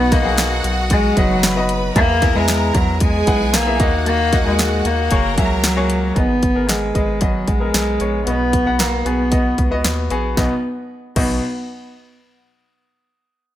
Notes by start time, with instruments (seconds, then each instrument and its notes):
Already playing: analog synth bass B1, grand piano B2 B3 D#4 F#4 D#5, cello B3, violin section F#4 F#5
0.12 cello A#3, grand piano B3 D#4 F#4 D#5, kick, snare, closed hi-hat
0.25 analog synth bass B1, grand piano F#3 D#4 F#4 G#4
0.38 snare, closed hi-hat
0.64 analog synth bass B1, closed hi-hat
0.90 cello G#3, kick, closed hi-hat
1.17 analog synth bass F#1, cello F#3, grand piano B3 D#4 F#4 D#5, kick, closed hi-hat
1.43 violin section B4 B5, snare, closed hi-hat
1.56 grand piano B3 D#4 F#4 D#5
1.69 closed hi-hat
1.95 analog synth bass E2, grand piano E3 B3 E4 G#4 E5, cello A#3, violin section A#4 A#5, kick, closed hi-hat
2.22 grand piano B3 E4 G#4 E5, kick, snare, closed hi-hat
2.35 analog synth bass E2, cello G#3, grand piano B3 E4 G#4 E5
2.48 snare, closed hi-hat
2.75 analog synth bass E2, cello F#3, kick, closed hi-hat
3.00 cello G#3, violin section G#4 G#5, kick, closed hi-hat
3.27 analog synth bass B1, grand piano B3 E4 G#4 F#5, kick, closed hi-hat
3.54 cello A#3, snare, closed hi-hat
3.66 grand piano B3 E4 G#4 E5
3.79 analog synth bass D#2, grand piano D#3 A#3 D#4 F#4 D#5, violin section F#4 F#5, kick, closed hi-hat
4.06 cello A#3, closed hi-hat
4.32 grand piano A#3 D#4 F#4 D#5, kick, snare, closed hi-hat
4.45 analog synth bass D#2, cello G#3, grand piano A#3 D#4 F#4 D#5
4.59 snare, closed hi-hat
4.85 analog synth bass D#2, cello A#3, closed hi-hat
5.11 analog synth bass F#1, grand piano A#3 F#4 G#4 C#5, violin section A#4 A#5, kick, closed hi-hat
5.37 analog synth bass C#2, cello F#3, grand piano A#3 F#4 G#4 E5, kick, closed hi-hat
5.64 snare, closed hi-hat
5.76 grand piano A#3 F#4 G#4 C#5
5.90 closed hi-hat
6.16 analog synth bass G#1, grand piano G#2 B3 G#4 D#5, cello B3, kick, closed hi-hat
6.43 kick, closed hi-hat
6.55 analog synth bass G#1, grand piano B3 G#4 A#4
6.68 cello G#3, snare, closed hi-hat
6.95 analog synth bass G#1, grand piano B3 G#4 D#5, kick, closed hi-hat
7.21 cello F#3, grand piano B3 G#4 D#5, kick, closed hi-hat
7.48 analog synth bass A#1, cello G#3, kick, closed hi-hat
7.60 grand piano B3 G#4 A#4
7.74 analog synth bass B1, snare, closed hi-hat
8.00 analog synth bass A#1, grand piano B3 G#4 C#5, closed hi-hat
8.26 analog synth bass B1, grand piano B2 B3 F#4 D#5, cello B3, closed hi-hat
8.53 kick, closed hi-hat
8.66 analog synth bass B1, grand piano B3 F#4 F#5
8.79 cello A#3, snare, closed hi-hat
9.05 analog synth bass B1, grand piano B3 F#4 G#4, cello B3, closed hi-hat
9.31 grand piano B3 F#4 D#5, kick, closed hi-hat
9.58 analog synth bass C#2, kick, closed hi-hat
9.71 grand piano B3 F#4 D#5
9.84 analog synth bass D#2, snare, closed hi-hat
10.10 analog synth bass A#1, grand piano B3 F#4 G#4, closed hi-hat
10.37 analog synth bass B1, grand piano B1 B3 F#4 D#5, cello B3, kick, snare
11.16 analog synth bass B1, grand piano B1 B3 F#4 D#5, cello B3, kick, crash